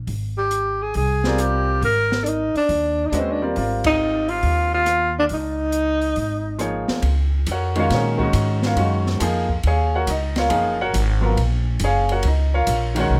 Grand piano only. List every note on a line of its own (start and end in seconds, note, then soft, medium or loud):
1.25 1.80 G3 medium
1.25 1.80 C4 medium
1.25 1.80 F4 medium
1.25 1.80 A#4 medium
1.25 1.81 D5 medium
3.12 3.39 G#3 medium
3.12 3.39 C#4 medium
3.12 3.39 F#4 medium
3.12 3.39 B4 medium
3.12 3.39 D#5 medium
3.42 3.54 G3 medium
3.42 3.54 C4 medium
3.42 3.55 F4 medium
3.42 3.56 A#4 medium
3.42 3.56 D5 medium
3.55 4.77 G3 medium
3.55 4.78 C4 medium
3.55 4.78 F4 medium
3.55 4.78 A#4 medium
3.55 4.79 D5 medium
6.58 7.03 F3 medium
6.58 7.03 A#3 medium
6.58 7.03 D#4 soft
6.58 7.04 G#4 medium
6.58 7.04 C#5 medium
7.51 7.76 F#4 medium
7.51 7.77 A#4 medium
7.51 7.77 C#5 medium
7.51 7.77 F#5 medium
7.76 8.16 D#3 medium
7.76 8.16 G#3 medium
7.76 7.93 C#4 medium
7.76 7.92 F4 medium
7.76 8.17 F#4 medium
7.76 7.92 A#4 medium
7.76 7.92 C#5 medium
7.76 7.91 F5 medium
7.94 8.17 C#4 medium
7.94 8.20 G#4 medium
7.94 8.21 A#4 medium
7.94 8.21 C#5 medium
8.17 8.73 D#3 medium
8.17 8.74 G#3 medium
8.17 8.74 C#4 medium
8.17 8.74 F#4 medium
8.23 8.62 D#4 medium
8.23 8.62 D#5 medium
8.66 8.79 F4 medium
8.66 8.79 A#4 medium
8.66 8.79 C#5 medium
8.66 8.78 F5 medium
8.76 9.18 D#3 medium
8.76 9.19 G#3 medium
8.76 9.20 C#4 medium
8.76 9.20 F#4 medium
9.20 9.46 F3 medium
9.20 9.47 A#3 medium
9.20 9.47 D#4 medium
9.20 9.47 G#4 medium
9.67 9.94 G#4 medium
9.67 9.94 C#5 medium
9.67 9.94 F5 medium
9.67 9.94 G#5 medium
9.95 10.09 F#4 medium
9.95 10.08 A#4 medium
9.95 10.08 C#5 medium
9.95 10.08 F#5 medium
10.10 10.37 D#4 medium
10.10 10.37 D#5 medium
10.38 10.78 F4 medium
10.38 10.78 A#4 medium
10.38 10.78 C#5 medium
10.38 10.77 F5 medium
10.49 10.76 F3 medium
10.49 10.76 A#3 medium
10.49 10.77 D#4 medium
10.49 10.77 G#4 medium
10.81 10.94 F#4 medium
10.81 10.95 A#4 medium
10.81 10.95 C#5 medium
10.81 10.94 F#5 loud
11.21 11.35 F#3 medium
11.21 11.36 B3 medium
11.21 11.36 F4 medium
11.21 11.36 A#4 medium
11.84 12.11 G#4 medium
11.84 12.10 C#5 medium
11.84 12.11 F5 medium
11.84 12.11 G#5 medium
12.12 12.25 F#4 medium
12.12 12.25 A#4 medium
12.12 12.25 C#5 medium
12.12 12.25 F#5 medium
12.27 12.54 D#4 medium
12.27 12.54 D#5 medium
12.54 12.95 F4 medium
12.54 12.94 A#4 medium
12.54 12.94 C#5 medium
12.54 12.95 F5 medium
12.95 13.20 D#3 medium
12.95 13.20 G#3 medium
12.95 13.20 C#4 medium
12.95 12.99 F#4 medium
13.00 13.13 F#4 medium
13.00 13.12 A#4 medium
13.00 13.12 C#5 medium
13.00 13.12 F#5 medium